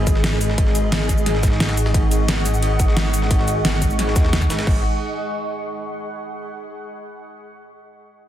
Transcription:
Already playing: detuned saw bass G#1, ambient pad G#3 D#4 G#4 D#5 F#5 C#6
0.07 kick, closed hi-hat, ride, shaker
0.15 snare
0.24 snare, closed hi-hat, ride
0.41 open hi-hat, ride, shaker
0.49 snare
0.58 detuned saw bass G#1, kick, closed hi-hat, ride
0.67 snare
0.75 closed hi-hat, ride, shaker
0.92 snare, closed hi-hat, ride
1.09 kick, closed hi-hat, ride, shaker
1.18 shaker
1.26 snare, closed hi-hat, ride
1.35 snare
1.43 kick, snare, closed hi-hat, ride, shaker
1.52 snare
1.60 snare, closed hi-hat, ride
1.69 snare, ride
1.77 open hi-hat, ride, shaker
1.86 snare
1.94 detuned saw bass G#1, kick, closed hi-hat, ride
2.11 closed hi-hat, ride, shaker
2.28 snare, closed hi-hat, ride
2.46 snare, closed hi-hat, ride, shaker
2.54 shaker
2.62 closed hi-hat, ride
2.80 kick, closed hi-hat, ride, shaker
2.88 snare
2.97 snare, closed hi-hat, ride
3.14 open hi-hat, ride, shaker
3.22 snare
3.31 detuned saw bass G#1, kick, closed hi-hat, ride
3.39 snare
3.48 closed hi-hat, ride, shaker
3.65 detuned saw bass G#1, snare, closed hi-hat, ride
3.82 kick, closed hi-hat, ride, shaker
3.90 shaker
3.99 snare, closed hi-hat, ride
4.08 snare
4.16 detuned saw bass D#2, kick, snare, closed hi-hat, ride, shaker
4.25 snare
4.33 snare, closed hi-hat, ride
4.42 kick, snare, shaker
4.50 detuned saw bass G#1, snare, open hi-hat, ride, shaker
4.59 snare, ride
4.67 detuned saw bass G#1, ambient pad G#4, kick, crash
4.72 ambient pad D#5
4.77 ambient pad G#5
4.83 ambient pad B5

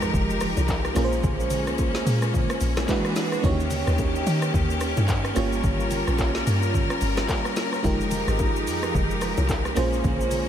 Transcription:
Already playing: log drum bass F2, string section F3 G#3 D#4 G4 A#4, fm electric piano G#3 D#4 F4 G4 A#4, impact
0.02 cross-stick, shaker
0.14 log drum bass F1, kick, low conga, shaker
0.30 shaker
0.41 cross-stick, open hi-hat, shaker
0.57 log drum bass C2, high bongo, low bongo, shaker
0.68 kick, clap, high bongo, shaker
0.85 cross-stick, shaker
0.94 log drum bass A#1, string section G#3 A#3 C#4, fm electric piano A#3 C#4 F4 G#4 A#4, cross-stick, open hi-hat, low bongo, shaker
1.04 fm electric piano C5
1.12 shaker
1.23 log drum bass A#1, kick, low conga, shaker
1.40 shaker
1.50 open hi-hat, low conga, shaker
1.67 log drum bass C2, cross-stick, shaker
1.78 kick, high bongo, shaker
1.95 snare, shaker
2.06 log drum bass A#2, open hi-hat, shaker
2.22 cross-stick, shaker
2.33 kick, low conga, shaker
2.50 cross-stick, shaker
2.61 log drum bass A#1, open hi-hat, shaker
2.77 cross-stick, snare, high bongo, low bongo, shaker
2.88 string section E3 D4 F#4 G#4, fm electric piano G#3 D4 E4 F#4 B4, kick, clap, high bongo, shaker
3.05 cross-stick, shaker
3.16 snare, open hi-hat, low bongo, shaker
3.32 cross-stick, shaker
3.42 log drum bass D#2, string section D#3 C#4 G4, fm electric piano A#3 C#4 D#4 F#4 C#5, kick, low conga, shaker
3.51 fm electric piano G4
3.60 shaker
3.71 open hi-hat, low conga, shaker
3.87 log drum bass D#2, cross-stick, shaker
3.98 kick, high bongo, shaker
4.15 shaker
4.27 log drum bass D#3, open hi-hat, shaker
4.42 cross-stick, shaker
4.54 log drum bass D#2, kick, low conga, shaker
4.70 shaker
4.81 cross-stick, open hi-hat, shaker
4.97 log drum bass G2, high bongo, low bongo, shaker
5.08 kick, clap, high bongo, shaker
5.25 cross-stick, shaker
5.35 log drum bass G1, string section G3 F4 A#4, fm electric piano A#3 C#4 F4 G4 C#5, cross-stick, open hi-hat, low bongo, shaker
5.52 shaker
5.64 log drum bass G1, kick, low conga, shaker
5.80 shaker
5.91 open hi-hat, low conga, shaker
6.07 log drum bass A#1, cross-stick, shaker
6.19 kick, clap, high bongo, shaker
6.35 snare, shaker
6.47 log drum bass G2, open hi-hat, shaker
6.62 shaker
6.74 kick, low conga, shaker
6.90 cross-stick, shaker
7.01 log drum bass G1, open hi-hat, shaker
7.17 cross-stick, snare, high bongo, low bongo, shaker
7.29 kick, clap, high bongo, shaker
7.45 cross-stick, shaker
7.56 snare, open hi-hat, low bongo, shaker
7.73 cross-stick, shaker
7.83 log drum bass F1, string section F3 G#3 D#4 G4, fm electric piano G#3 D#4 F4 G4 A#4, kick, low conga, shaker
8.01 shaker
8.11 open hi-hat, low conga, shaker
8.28 log drum bass G#1, cross-stick, shaker
8.39 kick, high bongo, shaker
8.56 shaker
8.67 log drum bass F2, open hi-hat, shaker
8.83 cross-stick, shaker
8.94 log drum bass F1, kick, low conga, shaker
9.11 shaker
9.21 cross-stick, open hi-hat, shaker
9.37 log drum bass C2, high bongo, low bongo, shaker
9.49 kick, clap, high bongo, shaker
9.65 cross-stick, shaker
9.75 log drum bass A#1, string section G#3 A#3 C#4, fm electric piano A#3 C#4 F4 G#4 C5, cross-stick, open hi-hat, low bongo, shaker
9.93 shaker
10.04 log drum bass A#1, kick, low conga, shaker
10.21 shaker
10.31 open hi-hat, low conga, shaker

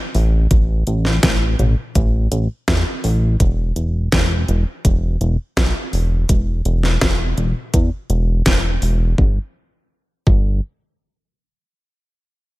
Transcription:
0.15 analog synth bass A1, open hi-hat
0.51 analog synth bass A1, kick, closed hi-hat
0.87 analog synth bass A1, closed hi-hat
1.05 snare
1.23 analog synth bass A1, kick, snare, closed hi-hat
1.59 analog synth bass A1, closed hi-hat, mid tom
1.95 analog synth bass A1, kick, closed hi-hat
2.32 analog synth bass A1, closed hi-hat
2.68 analog synth bass E2, kick, snare, closed hi-hat
3.04 analog synth bass A1, open hi-hat
3.40 analog synth bass E1, kick, closed hi-hat
3.76 analog synth bass E1, closed hi-hat
4.12 analog synth bass E1, kick, snare, closed hi-hat
4.48 analog synth bass E1, closed hi-hat
4.85 analog synth bass E1, kick, closed hi-hat
5.21 analog synth bass E1, closed hi-hat
5.57 analog synth bass B1, kick, snare, closed hi-hat
5.93 analog synth bass E1, open hi-hat
6.29 analog synth bass E1, kick, closed hi-hat
6.65 analog synth bass E1, closed hi-hat
6.83 snare
7.01 analog synth bass E1, kick, snare, closed hi-hat
7.37 analog synth bass E1, closed hi-hat, mid tom
7.74 analog synth bass E2, kick, closed hi-hat
8.10 analog synth bass E1, closed hi-hat
8.46 analog synth bass E1, kick, snare, closed hi-hat
8.82 analog synth bass E1, open hi-hat
9.18 analog synth bass G1, kick
10.27 analog synth bass G1, kick

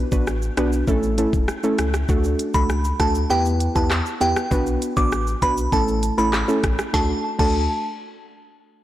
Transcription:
0.12 sub bass A1, synth pluck B3 D4 F#4 B4, kick, shaker
0.27 cross-stick, shaker
0.42 shaker
0.57 sub bass B1, synth pluck B3 D4 F#4 B4, cross-stick, closed hi-hat, shaker
0.72 shaker
0.88 sub bass A1, synth pluck A3 C#4 E4 A4, kick, shaker
1.03 shaker
1.18 synth pluck A3 C#4 E4 A4, closed hi-hat, shaker
1.33 sub bass E1, kick, shaker
1.48 cross-stick, shaker
1.63 synth pluck A3 C#4 E4 A4, shaker
1.78 sub bass C#2, cross-stick, closed hi-hat, shaker
1.94 cross-stick, shaker
2.09 sub bass D2, synth pluck A3 D4 F#4 A4, kick, shaker
2.24 shaker
2.39 closed hi-hat, shaker
2.54 sub bass C#2, synth pluck A3 D4 F#4 A4, synth bell B5, kick, shaker
2.69 cross-stick, shaker
2.84 shaker
3.00 sub bass D2, synth pluck A3 D4 F#4 A4, synth bell A5, kick, cross-stick, closed hi-hat, shaker
3.15 shaker
3.30 sub bass E2, synth pluck B3 E4 G4 B4, synth bell G5, shaker
3.45 shaker
3.60 closed hi-hat, shaker
3.75 sub bass E2, synth pluck B3 E4 G4 B4, synth bell A5, kick, shaker
3.91 cross-stick, clap, shaker
4.06 shaker
4.21 sub bass E2, synth pluck B3 E4 G4 B4, synth bell G5, closed hi-hat, shaker
4.36 cross-stick, shaker
4.51 sub bass B1, synth pluck B3 D4 F#4 B4, kick, shaker
4.66 shaker
4.82 closed hi-hat, shaker
4.97 sub bass A1, synth pluck B3 D4 F#4 B4, synth bell D6, kick, shaker
5.12 cross-stick, shaker
5.27 shaker
5.42 sub bass B1, synth pluck B3 D4 F#4 B4, synth bell B5, kick, closed hi-hat, shaker
5.57 shaker
5.72 sub bass A1, synth pluck A3 C#4 E4 A4, synth bell A5, kick, shaker
5.88 shaker
6.03 closed hi-hat, shaker
6.18 sub bass A1, synth pluck A3 C#4 E4 A4, synth bell B5, shaker
6.33 cross-stick, clap, shaker
6.48 synth pluck A3 C#4 E4 A4, shaker
6.64 sub bass A1, kick, cross-stick, closed hi-hat, shaker
6.79 cross-stick, shaker
6.93 sub bass D2, synth pluck A3 D4 F#4 A4, synth bell A5, kick, snare
7.39 sub bass D2, synth pluck A3 D4 F#4 A4, synth bell A5, kick, crash

